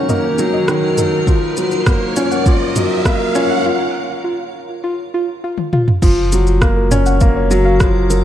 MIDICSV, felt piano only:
0, 0, Header, 1, 2, 480
1, 0, Start_track
1, 0, Key_signature, 6, "major"
1, 0, Tempo, 594059
1, 1033, Time_signature, 4, 2, 24, 8
1, 6659, End_track
2, 0, Start_track
2, 0, Title_t, "Felt piano"
2, 0, Program_c, 0, 0
2, 0, Control_c, 0, 64, 127
2, 0, Note_on_c, 0, 51, 68
2, 0, Note_on_c, 0, 54, 68
2, 0, Note_on_c, 0, 58, 66
2, 0, Note_on_c, 0, 61, 91
2, 72, Note_off_c, 0, 58, 0
2, 72, Note_on_c, 0, 58, 73
2, 300, Note_off_c, 0, 58, 0
2, 311, Note_off_c, 0, 54, 0
2, 311, Note_on_c, 0, 54, 97
2, 540, Note_off_c, 0, 54, 0
2, 553, Note_off_c, 0, 51, 0
2, 553, Note_on_c, 0, 51, 69
2, 781, Note_off_c, 0, 51, 0
2, 787, Note_on_c, 0, 54, 72
2, 927, Note_off_c, 0, 54, 0
2, 1030, Note_on_c, 0, 53, 68
2, 1043, Control_c, 0, 64, 0
2, 1046, Note_off_c, 0, 61, 0
2, 1171, Control_c, 0, 64, 127
2, 1259, Note_off_c, 0, 53, 0
2, 1273, Note_on_c, 0, 54, 66
2, 1409, Note_off_c, 0, 54, 0
2, 1513, Note_on_c, 0, 58, 69
2, 1741, Note_off_c, 0, 58, 0
2, 1751, Note_on_c, 0, 61, 84
2, 1972, Note_off_c, 0, 61, 0
2, 1990, Note_on_c, 0, 53, 74
2, 2219, Note_off_c, 0, 53, 0
2, 2229, Note_on_c, 0, 54, 70
2, 2368, Note_off_c, 0, 54, 0
2, 2469, Note_on_c, 0, 58, 73
2, 2699, Note_off_c, 0, 58, 0
2, 2709, Note_on_c, 0, 61, 100
2, 2932, Note_off_c, 0, 61, 0
2, 2964, Control_c, 0, 64, 0
2, 3127, Control_c, 0, 64, 127
2, 4870, Note_on_c, 0, 53, 76
2, 4884, Control_c, 0, 64, 0
2, 4999, Control_c, 0, 64, 127
2, 5099, Note_off_c, 0, 53, 0
2, 5111, Note_on_c, 0, 54, 72
2, 5248, Note_off_c, 0, 54, 0
2, 5350, Note_on_c, 0, 58, 79
2, 5579, Note_off_c, 0, 58, 0
2, 5587, Note_on_c, 0, 61, 96
2, 5817, Note_off_c, 0, 61, 0
2, 5831, Note_on_c, 0, 58, 81
2, 6059, Note_off_c, 0, 58, 0
2, 6066, Note_on_c, 0, 54, 108
2, 6297, Note_off_c, 0, 54, 0
2, 6306, Note_on_c, 0, 53, 78
2, 6537, Note_off_c, 0, 53, 0
2, 6547, Note_on_c, 0, 54, 77
2, 6659, Note_off_c, 0, 54, 0
2, 6659, End_track
0, 0, End_of_file